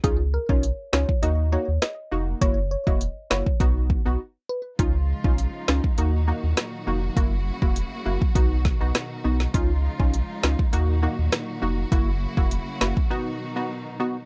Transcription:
0.03 sub bass C#2, synth stab C#4 D#4 F4, synth pluck G#4, kick, closed hi-hat
0.34 synth pluck A#4
0.49 sub bass B1, synth stab C#4 D#4 F4, synth pluck C#5, kick
0.63 closed hi-hat
0.93 sub bass C#2, synth stab C#4 D#4 F4, synth pluck C#5, cross-stick, snare
1.09 kick
1.22 sub bass D#2, synth stab A#3 D#4 F#4, synth pluck D#5, closed hi-hat
1.52 synth stab A#3 D#4 F#4, synth pluck C#5
1.68 sub bass D#2
1.82 synth pluck D#5, cross-stick, snare, closed hi-hat
2.11 sub bass F1, synth stab A#3 D#4 F#4
2.41 sub bass F#1, synth stab A#3 E4 F#4, synth pluck C#5, kick, closed hi-hat
2.71 synth pluck C#5
2.87 sub bass E1, synth stab A#3 E4 F#4, synth pluck D#5, kick
3.01 closed hi-hat
3.30 sub bass F#1, synth stab A#3 E4 F#4, synth pluck C#5, cross-stick, snare
3.46 kick
3.60 sub bass B1, synth stab B3 D#4 F#4, kick, closed hi-hat
3.90 kick
4.05 sub bass B1, synth stab B3 D#4 F#4
4.49 synth pluck B4
4.79 sub bass C#2, string section C#3 F3 G#3 D#4 F4, synth stab C#4 D#4 F4, kick, closed hi-hat
5.24 sub bass B1, synth stab C#4 D#4 F4, kick
5.38 closed hi-hat
5.68 sub bass C#2, synth stab C#4 D#4 F4, cross-stick, snare
5.84 kick
5.98 sub bass D#2, string section A#2 D#3 F#3 F#4, synth stab A#3 D#4 F#4, closed hi-hat
6.27 synth stab A#3 D#4 F#4
6.43 sub bass D#2
6.57 cross-stick, snare, closed hi-hat
6.87 sub bass F1, synth stab A#3 D#4 F#4
7.16 sub bass F#1, string section C#3 A#3 E4, synth stab A#3 E4 F#4, kick, closed hi-hat
7.62 sub bass E1, synth stab A#3 E4 F#4, kick
7.76 closed hi-hat
8.05 sub bass F#1, synth stab A#3 E4 F#4
8.22 kick
8.35 sub bass B1, string section B2 D#3 D#4, synth stab B3 D#4 F#4, kick, closed hi-hat
8.65 kick, snare
8.80 sub bass B1, synth stab B3 D#4 F#4
8.95 cross-stick, snare, closed hi-hat
9.24 sub bass B1, synth stab B3 D#4 F#4
9.40 snare
9.54 sub bass C#2, string section C#3 F3 G#3 F4, synth stab C#4 D#4 F4, kick, closed hi-hat
9.99 sub bass B1, synth stab C#4 D#4 F4, kick
10.14 closed hi-hat
10.43 sub bass C#2, synth stab C#4 D#4 F4, cross-stick, snare
10.59 kick
10.73 sub bass D#2, string section A#2 D#3 F#3 F#4, synth stab A#3 D#4 F#4, closed hi-hat
11.02 synth stab A#3 D#4 F#4
11.19 sub bass D#2
11.32 cross-stick, snare, closed hi-hat
11.62 sub bass F1, synth stab A#3 D#4 F#4
11.92 sub bass F#1, string section C#3 A#3 E4, synth stab A#3 E4 F#4, kick, closed hi-hat
12.37 sub bass E1, synth stab A#3 E4 F#4, kick
12.51 closed hi-hat
12.81 sub bass F#1, synth stab A#3 E4 F#4, cross-stick, snare
12.97 kick
13.10 string section B2 D#3 D#4, synth stab B3 D#4 F#4
13.56 synth stab B3 D#4 F#4
14.00 synth stab B3 D#4 F#4

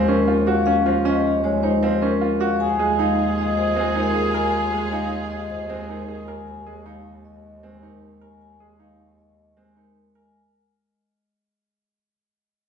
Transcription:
Already playing: double bass D#2, harp C#3 F3 G#3, grand piano C4
0.08 grand piano C#4, vibraphone A#4
0.28 grand piano F4
0.47 grand piano F#4, vibraphone F5
0.66 grand piano C#4, vibraphone F5
0.86 harp F3, grand piano F4
1.05 grand piano C#4, vibraphone D#5
1.44 harp G#3, vibraphone C#5
1.63 grand piano D#4, vibraphone C5
1.82 harp F3, grand piano C4
2.02 grand piano C#4, vibraphone A#4
2.21 grand piano F4
2.40 grand piano F#4, vibraphone F5
2.60 double bass D#2, violin section F4 G#4, oboe G#4, vibraphone G#5
2.79 harp G#3, grand piano G#4
2.99 grand piano D#4, vibraphone F5
3.38 vibraphone D#5
3.57 vibraphone C5
3.76 harp G#3, grand piano C4
3.96 grand piano D#4, vibraphone A#4
4.15 grand piano G#4
4.34 grand piano A#4, vibraphone G#5
4.54 vibraphone G#5
4.73 harp G#3, grand piano G#4
4.92 grand piano D#4, vibraphone F5
5.31 vibraphone D#5
5.50 vibraphone C5
5.70 harp G#3, grand piano C4
5.89 grand piano D#4, vibraphone A#4
6.08 grand piano G#4
6.28 grand piano A#4, vibraphone G#5
6.47 vibraphone G#5
6.66 harp G#3, grand piano G#4
6.86 grand piano D#4, vibraphone F5
7.25 vibraphone D#5
7.63 harp G#3, grand piano C4
7.83 grand piano D#4, vibraphone A#4
8.21 grand piano A#4, vibraphone G#5
8.41 vibraphone G#5
8.60 harp G#3, grand piano G#4
8.80 grand piano D#4, vibraphone F5
9.18 vibraphone D#5
9.57 harp G#3, grand piano C4
9.77 grand piano D#4, vibraphone A#4
10.15 grand piano A#4, vibraphone G#5

